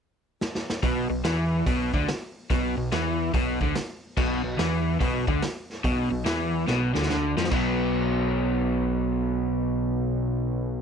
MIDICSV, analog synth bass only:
0, 0, Header, 1, 2, 480
1, 0, Start_track
1, 0, Tempo, 418994
1, 946, Time_signature, 4, 2, 24, 8
1, 12391, End_track
2, 0, Start_track
2, 0, Title_t, "Analog synth bass"
2, 0, Program_c, 0, 38
2, 949, Note_on_c, 0, 35, 95
2, 1235, Note_off_c, 0, 35, 0
2, 1258, Note_on_c, 0, 35, 82
2, 1415, Note_off_c, 0, 35, 0
2, 1424, Note_on_c, 0, 40, 100
2, 1870, Note_off_c, 0, 40, 0
2, 1904, Note_on_c, 0, 35, 98
2, 2192, Note_off_c, 0, 35, 0
2, 2219, Note_on_c, 0, 38, 98
2, 2374, Note_off_c, 0, 38, 0
2, 2865, Note_on_c, 0, 35, 91
2, 3150, Note_off_c, 0, 35, 0
2, 3175, Note_on_c, 0, 35, 86
2, 3330, Note_off_c, 0, 35, 0
2, 3347, Note_on_c, 0, 40, 91
2, 3789, Note_off_c, 0, 40, 0
2, 3822, Note_on_c, 0, 35, 100
2, 4107, Note_off_c, 0, 35, 0
2, 4128, Note_on_c, 0, 38, 100
2, 4285, Note_off_c, 0, 38, 0
2, 4779, Note_on_c, 0, 35, 100
2, 5064, Note_off_c, 0, 35, 0
2, 5091, Note_on_c, 0, 35, 84
2, 5245, Note_off_c, 0, 35, 0
2, 5263, Note_on_c, 0, 40, 94
2, 5704, Note_off_c, 0, 40, 0
2, 5734, Note_on_c, 0, 35, 102
2, 6021, Note_off_c, 0, 35, 0
2, 6043, Note_on_c, 0, 38, 91
2, 6200, Note_off_c, 0, 38, 0
2, 6697, Note_on_c, 0, 35, 98
2, 6982, Note_off_c, 0, 35, 0
2, 7001, Note_on_c, 0, 35, 76
2, 7159, Note_off_c, 0, 35, 0
2, 7170, Note_on_c, 0, 40, 101
2, 7617, Note_off_c, 0, 40, 0
2, 7654, Note_on_c, 0, 35, 100
2, 7941, Note_off_c, 0, 35, 0
2, 7972, Note_on_c, 0, 38, 100
2, 8125, Note_off_c, 0, 38, 0
2, 8139, Note_on_c, 0, 38, 94
2, 8424, Note_off_c, 0, 38, 0
2, 8450, Note_on_c, 0, 41, 90
2, 8604, Note_off_c, 0, 41, 0
2, 8609, Note_on_c, 0, 35, 89
2, 12391, Note_off_c, 0, 35, 0
2, 12391, End_track
0, 0, End_of_file